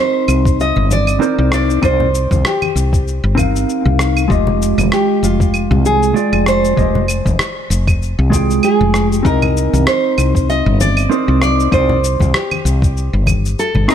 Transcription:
Already playing: C4 D#4 A#4 D#5
0.00 C5
0.28 C2, claves, shaker
0.45 kick, shaker
0.60 D#5, shaker
0.76 G1, low conga
0.91 D5, high conga, shaker
1.07 claves, shaker
1.20 C4 D#4 A#4 C5, shaker
1.38 C2
1.52 D5, cross-stick, shaker
1.70 shaker
1.82 C2 C4 D#4 A#4 C5 D5, kick, claves, shaker
2.00 low conga
2.15 shaker
2.31 C2, kick, high conga, shaker
2.45 G4, cross-stick, shaker
2.62 high conga, claves
2.75 C2, shaker
2.93 kick, shaker
3.08 shaker
3.24 G1
3.35 C4 D#4 A#4, kick, high conga, claves, shaker
3.39 F5
3.56 shaker
3.69 shaker
3.85 C2, low conga
3.99 cross-stick, shaker
4.17 claves, shaker
4.28 F1 G#3 F4 G4 D#5, kick, shaker
4.47 low conga
4.62 shaker
4.78 F1, high conga, claves, shaker
4.92 G4, cross-stick, shaker
5.23 F1 F4, shaker
5.40 kick, shaker
5.54 claves, shaker
5.71 C2, low conga
5.85 G#4, high conga, shaker
6.03 shaker
6.14 G#3 F4 D5 G5, shaker
6.33 F1, claves
6.46 C5, cross-stick, shaker
6.65 shaker
6.76 F1 G#3 F4 G4 D#5, kick, shaker
6.95 low conga
7.08 claves, shaker
7.26 F1, kick, high conga, shaker
7.39 cross-stick, shaker
7.70 F1, shaker
7.87 kick, claves, shaker
8.02 shaker
8.19 C2
8.30 G#3 F4 G#4 G5, kick, high conga, shaker
8.50 shaker
8.63 G#4, claves, shaker
8.81 F1, low conga
8.94 cross-stick, shaker
9.09 G4, shaker
9.23 C2 C4 D#4 A#4 D#5, kick, shaker
9.42 low conga, claves
9.57 shaker
9.73 C2, high conga, shaker
9.87 C5, cross-stick, shaker
10.18 C2, claves, shaker
10.35 kick, shaker
10.50 D#5, shaker
10.66 G1, low conga
10.81 D5, high conga, shaker
10.97 claves, shaker
11.10 C4 D#4 A#4 C5, shaker
11.28 C2
11.42 D5, cross-stick, shaker
11.60 shaker
11.71 C2 C4 D#4 A#4 C5 D5, kick, claves, shaker
11.89 low conga
12.04 shaker
12.20 C2, kick, high conga, shaker
12.34 G4, cross-stick, shaker
12.51 high conga, claves
12.65 C2, shaker
12.82 kick, shaker
12.97 shaker
13.13 G1
13.27 kick, high conga, claves, shaker
13.45 shaker
13.59 A4, shaker
13.75 G1, low conga
13.88 C4 D#4 A#4 D#5, cross-stick, shaker

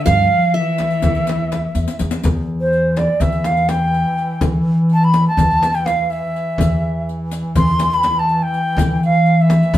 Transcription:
Already playing: C5
0.05 G2 F3 F5, riq, frame drum, darbuka dum
0.54 E3 E5
0.78 riq, darbuka tek, frame drum
0.90 riq, darbuka ka
1.02 E2, riq, darbuka dum, frame drum
1.15 riq, darbuka ka
1.27 riq, darbuka tek, frame drum
1.52 riq, darbuka tek, frame drum
1.75 E2, riq
1.88 riq
1.99 E2, riq
2.11 riq
2.23 E2 E3, riq, frame drum, darbuka dum
2.49 darbuka ka
2.61 C5
2.73 riq
2.96 D5, riq, darbuka tek, frame drum
3.20 E2 E5, riq, frame drum, darbuka dum
3.32 riq
3.44 F5, riq, darbuka tek, frame drum
3.57 riq
3.69 G5, riq, darbuka tek, frame drum
3.94 riq
4.18 riq, darbuka ka
4.41 E3, riq, frame drum, darbuka dum
4.68 darbuka ka
4.89 A5, riq
5.04 B5
5.13 riq, darbuka tek, frame drum
5.28 A5
5.37 E2, riq, frame drum, darbuka dum
5.51 riq
5.63 riq, darbuka tek, frame drum
5.75 G5, riq
5.86 F5, riq, darbuka tek, frame drum
6.10 E5, riq
6.36 riq, darbuka ka
6.58 E2 E3, riq, frame drum, darbuka dum
6.84 darbuka ka
7.09 riq
7.31 riq, darbuka tek
7.55 E2 C6, riq, frame drum, darbuka dum
7.68 riq
7.79 riq, darbuka tek, frame drum
7.92 B5, riq
8.03 riq, darbuka tek, frame drum
8.19 A5
8.29 riq
8.43 G5
8.53 riq, darbuka ka
8.77 E3, riq, darbuka dum, frame drum
9.03 F5, riq, darbuka ka
9.26 riq
9.41 E5
9.49 riq, darbuka tek, frame drum
9.63 riq
9.74 E2, riq, frame drum

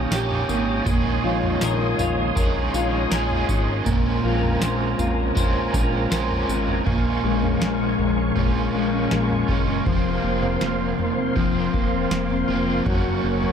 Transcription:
Already playing: A#2 D#3 A#3 C#4 G4 C#5 G5 A#5 D#6
0.11 A#1 D#3 A#3 C#4 G4, snare, tambourine
0.16 G4
0.31 floor tom
0.49 G#1 A#3, tambourine
0.85 A#1 A#2 D#3 C#5 G#5 C6 D#6, kick, floor tom, tambourine
0.89 G#3 C#4 G#4
1.24 A#1 F4
1.43 floor tom
1.61 A#1 A#4, snare, tambourine
1.99 A#1 F4, floor tom, tambourine
2.35 A#1 D#3 G#3 C#4 A#4, kick, floor tom, tambourine
2.41 G#4
2.74 A#1 F4, tambourine
3.10 A#1 D#3 G#3 C#4 A#4, snare, tambourine
3.15 G#4
3.30 floor tom
3.48 G#1 C#4, kick, tambourine
3.84 A#1 A#2 G#3 A#4 A#5, kick, floor tom, tambourine
3.89 C4 C#4 F4
4.24 A#1 F4
4.43 floor tom
4.61 A#1 C5, snare, tambourine
4.99 A#1 F4, floor tom, tambourine
5.35 A#1 G#3 C4 C#4 C5, kick, floor tom, tambourine
5.40 F4
5.74 A#1 F4, kick, tambourine
6.10 A#1 G#3 C4 C#4 C5, snare, tambourine
6.15 F4
6.31 floor tom
6.48 G#1 C#4, tambourine
6.68 floor tom
6.85 A#1 A#2 F3 A#4 F5 G#5 C#6, kick, floor tom
6.89 G#3 C#4 F4
7.05 C#4
7.24 A#1 G#3
7.43 C#4, floor tom
7.62 A#1 G#3, snare
7.80 C#4
7.99 A#1 G#3, floor tom
8.18 C#4
8.36 A#1 A#2 F3 G#3 C#4, kick, floor tom
8.41 F4
8.55 C#4
8.74 A#1 G#3
8.93 C#4
9.11 A#1 G#3, snare
9.30 C#4, floor tom
9.48 F#1 G#3 C#4 F4, kick
9.53 G#3
9.68 C#4
9.84 F1 F2 C3 F3 A#4 C5 C6, kick, floor tom
9.90 A#3 C4 F4
10.05 C4
10.24 F1 A#3
10.43 C4, floor tom
10.61 F1 A#3, snare
10.80 C4
10.99 F1 A#3, floor tom
11.17 C4
11.36 F1 F3 A#3 C4, kick, floor tom
11.41 F4
11.55 C4
11.74 F1 A#3, kick
11.92 C4
12.11 F1 A#3, snare
12.30 C4, floor tom
12.48 F1 A#3 C4 F4
12.53 F3
12.68 C4
12.84 F#1 F#2 C#3 F#3 C#5 F#5 C#6, kick, floor tom
12.89 A#3 C#4 F#4
13.04 C#4
13.23 F#1 A#3
13.42 C#4, floor tom

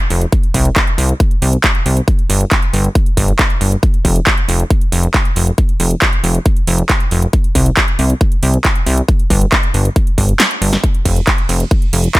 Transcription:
0.10 F1, open hi-hat
0.21 closed hi-hat
0.32 kick, closed hi-hat
0.43 closed hi-hat
0.54 C2, kick, open hi-hat
0.65 closed hi-hat
0.76 kick, clap, closed hi-hat
0.87 closed hi-hat
0.98 C2, open hi-hat
1.09 closed hi-hat
1.20 kick, closed hi-hat
1.31 closed hi-hat
1.42 C2, open hi-hat
1.53 closed hi-hat
1.64 kick, clap, closed hi-hat
1.75 closed hi-hat
1.86 C2, open hi-hat
1.97 closed hi-hat
2.08 kick, closed hi-hat
2.19 closed hi-hat
2.30 G1, open hi-hat
2.41 closed hi-hat
2.51 kick, clap, closed hi-hat
2.62 closed hi-hat
2.73 G1, open hi-hat
2.84 closed hi-hat
2.95 kick, closed hi-hat
3.06 closed hi-hat
3.17 G1, kick, open hi-hat
3.28 closed hi-hat
3.39 kick, clap, closed hi-hat
3.50 closed hi-hat
3.61 G1, open hi-hat
3.72 closed hi-hat
3.83 kick, closed hi-hat
3.94 closed hi-hat
4.05 F1, kick, open hi-hat
4.16 closed hi-hat
4.27 kick, clap, closed hi-hat
4.38 closed hi-hat
4.49 F1, open hi-hat
4.60 closed hi-hat
4.70 kick, closed hi-hat
4.81 closed hi-hat
4.92 F1, open hi-hat
5.03 closed hi-hat
5.14 kick, clap, closed hi-hat
5.25 closed hi-hat
5.36 F1, open hi-hat
5.47 closed hi-hat
5.58 kick, closed hi-hat
5.69 closed hi-hat
5.80 F1, open hi-hat
5.91 closed hi-hat
6.02 kick, clap, closed hi-hat
6.13 closed hi-hat
6.24 F1, open hi-hat
6.35 closed hi-hat
6.46 kick, closed hi-hat
6.57 closed hi-hat
6.67 F1, open hi-hat
6.78 closed hi-hat
6.89 kick, clap, closed hi-hat
7.00 closed hi-hat
7.11 F1, open hi-hat
7.22 closed hi-hat
7.33 kick, closed hi-hat
7.44 closed hi-hat
7.55 C2, kick, open hi-hat
7.66 closed hi-hat
7.77 kick, clap, closed hi-hat
7.88 closed hi-hat
7.99 C2, open hi-hat
8.10 closed hi-hat
8.21 kick, closed hi-hat
8.32 closed hi-hat
8.43 C2, open hi-hat
8.54 closed hi-hat
8.65 kick, clap, closed hi-hat
8.76 closed hi-hat
8.86 C2, open hi-hat
8.97 closed hi-hat
9.08 kick, closed hi-hat
9.19 closed hi-hat
9.30 G1, kick, open hi-hat
9.41 closed hi-hat
9.52 kick, clap, closed hi-hat
9.63 closed hi-hat
9.74 G1, open hi-hat
9.85 closed hi-hat
9.96 kick, closed hi-hat
10.07 closed hi-hat
10.18 G1, kick, open hi-hat
10.29 closed hi-hat
10.40 snare, clap, closed hi-hat
10.51 closed hi-hat
10.62 G1, open hi-hat
10.73 snare
10.84 kick, closed hi-hat
10.95 closed hi-hat
11.05 F1, kick, open hi-hat, ride
11.16 closed hi-hat
11.27 kick, clap, closed hi-hat
11.38 closed hi-hat
11.49 F1, open hi-hat, ride
11.60 closed hi-hat
11.71 kick, closed hi-hat
11.82 closed hi-hat
11.93 F1, open hi-hat, ride
12.04 closed hi-hat
12.15 kick, clap, closed hi-hat

